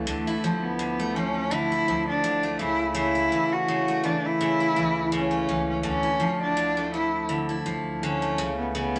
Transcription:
Already playing: E3 A3 E4
0.06 D2 D3 A3
0.27 E4
0.44 F3
0.63 B3
0.79 D3
0.99 A3
1.15 F3 C#4
1.51 D3 E4
1.72 E4
1.88 D2 F3
2.09 D4
2.24 D3
2.43 A3
2.59 C#2 C#3 E4
2.95 C#3 E4
3.15 E4
3.32 E3
3.52 F#4
3.68 C#3
3.88 A3
4.03 E3 D4
4.26 E4
4.41 C#3
4.60 E4
4.76 C#2 E3
5.12 C#3 C#4
5.31 A3
5.49 C#2 E3
5.70 C#4
5.83 D2 D3 C#4
6.03 E4
6.20 F3
6.42 D4
6.57 D3
6.77 A3
6.94 F3 E4
7.29 D3
7.49 E4
7.66 D2 F3
8.02 D3 C#4
8.22 A3
8.38 C#2 C#3
8.58 B3
8.75 C#3 B3
8.96 E4

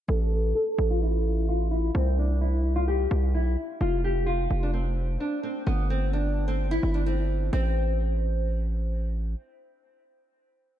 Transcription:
0.08 A1 A4
0.32 B4
0.55 A4
0.78 A1
0.90 F4
1.02 E4
1.49 F4
1.71 E4
1.95 C2 C4
2.18 D4
2.41 E4
2.76 F4
2.88 G4
3.11 C2
3.34 B1 E4
3.81 F1 F4
4.04 G4
4.26 F4
4.51 F1
4.63 D4
4.74 C4
5.20 D4
5.43 C4
5.66 G1 B3
5.90 C4
6.13 D4
6.48 C4
6.71 E4
6.83 G1
6.94 D4
7.06 C4
7.53 A1 C4

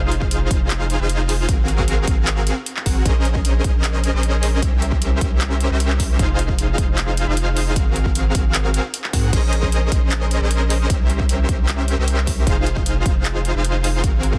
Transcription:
Already playing: F1 D#4 F4 G#4 C5 F5
0.12 closed hi-hat
0.22 kick
0.31 closed hi-hat
0.51 F1 D#4 F4 G#4 C5 F5, kick, closed hi-hat
0.70 clap, closed hi-hat
0.90 closed hi-hat
1.00 F1 D#4 F4 G#4 C5 F5
1.09 closed hi-hat
1.29 open hi-hat
1.49 G#1 C4 F#4 F5, kick, closed hi-hat
1.68 closed hi-hat
1.78 kick
1.88 closed hi-hat
2.07 G#1 C4, kick, closed hi-hat
2.27 clap, closed hi-hat
2.47 closed hi-hat
2.66 closed hi-hat
2.77 clap
2.86 G#1 C4 F#4 G#4 A#4 F#5, kick, open hi-hat
3.06 A#1 C#4 G#4 A#4 C5 D#5, kick, closed hi-hat
3.25 closed hi-hat
3.35 kick
3.45 closed hi-hat
3.64 A#1 C#4 G#4 A#4 C5 D#5, kick, closed hi-hat
3.84 clap, closed hi-hat
4.04 closed hi-hat
4.14 A#1 C#4 G#4 A#4 C5 D#5
4.23 closed hi-hat
4.43 open hi-hat
4.62 C2, kick, closed hi-hat
4.82 closed hi-hat
4.92 kick
5.02 closed hi-hat
5.21 C2 G4 E5, kick, closed hi-hat
5.41 clap, closed hi-hat
5.61 closed hi-hat
5.71 C2 C#4 G4 A#4 C5 E5
5.80 closed hi-hat
5.90 clap
6.00 kick, open hi-hat
6.19 F1 D#4 F4 G#4 C5 F5, kick, closed hi-hat
6.39 closed hi-hat
6.49 kick
6.59 closed hi-hat
6.78 F1 D#4 F4 G#4 C5 F5, kick, closed hi-hat
6.98 clap, closed hi-hat
7.17 closed hi-hat
7.27 F1 D#4 F4 G#4 C5 F5
7.37 closed hi-hat
7.57 open hi-hat
7.76 G#1 C4 F#4, kick, closed hi-hat
7.96 closed hi-hat
8.06 kick
8.15 closed hi-hat
8.35 G#1 C4 F#4 G#4 A#4 F5, kick, closed hi-hat
8.54 clap, closed hi-hat
8.74 closed hi-hat
8.94 closed hi-hat
9.04 clap
9.13 G#2 C4 F#4 G#4 A#4 F#5, kick, open hi-hat
9.33 A#1 C#4 G#4 A#4 C5 D#5, kick, closed hi-hat, crash
9.53 closed hi-hat
9.63 kick
9.72 closed hi-hat
9.92 A#1, kick, closed hi-hat
10.11 clap, closed hi-hat
10.31 closed hi-hat
10.41 A#1 C#4 G#4 A#4 C5 D#5
10.51 closed hi-hat
10.70 open hi-hat
10.90 C2 G4 E5, kick, closed hi-hat
11.10 closed hi-hat
11.20 kick
11.29 closed hi-hat
11.49 C2 C#4 G4 A#4 C5 E5, kick, closed hi-hat
11.68 clap, closed hi-hat
11.88 closed hi-hat
11.98 C2 C#4 G4 A#4 C5 E5
12.08 closed hi-hat
12.18 clap
12.27 kick, open hi-hat
12.47 F1 D#4 F4 G#4 C5 F5, kick, closed hi-hat
12.67 closed hi-hat
12.77 kick
12.86 closed hi-hat
13.06 F1, kick, closed hi-hat
13.25 clap, closed hi-hat
13.45 closed hi-hat
13.55 F1 D#4 F4 G#4 C5 F5
13.65 closed hi-hat
13.84 open hi-hat
14.04 G#1 C4 F#4, kick, closed hi-hat
14.23 closed hi-hat
14.33 kick

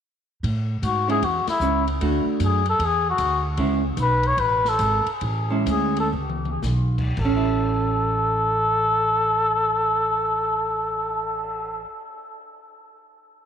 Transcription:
0.43 A2, kick, ride
0.82 G#2 F#4, kick, hi-hat pedal, ride
1.08 G#3 C#4 E4 G#4, ride
1.22 E2 F#4, kick, ride
1.46 E4, muted upright bass stroke, snare, ride
1.60 C#2 G#3 C#4 E4, hi-hat pedal
1.88 ride
2.01 D2 A3 D4 F#4, kick, ride
2.25 muted upright bass stroke
2.40 F#2, kick, hi-hat pedal, ride
2.45 G#4
2.66 A4, ride
2.79 E2, kick, ride
2.85 G#4
3.10 F#4
3.18 D2, kick, hi-hat pedal, ride
3.57 C#2 G#3 C#4 E4, kick, ride
3.97 B1, kick, hi-hat pedal, ride
4.01 B4
4.23 C#5, ride
4.37 A1 B4, kick, ride
4.65 A4, snare
4.79 G#1, kick, hi-hat pedal, ride
5.06 muted upright bass stroke, ride
5.21 A1, kick, ride
5.50 G#3 C#4 E4
5.66 D2, kick, hi-hat pedal, ride
5.70 G#4
5.97 A4, ride
6.13 C#2
6.30 mid tom
6.45 mid tom
6.62 B1, snare, hi-hat pedal
6.98 kick, crash
7.17 A1 A4, kick, crash
7.25 C#4
7.36 E4
7.54 cymbal swell

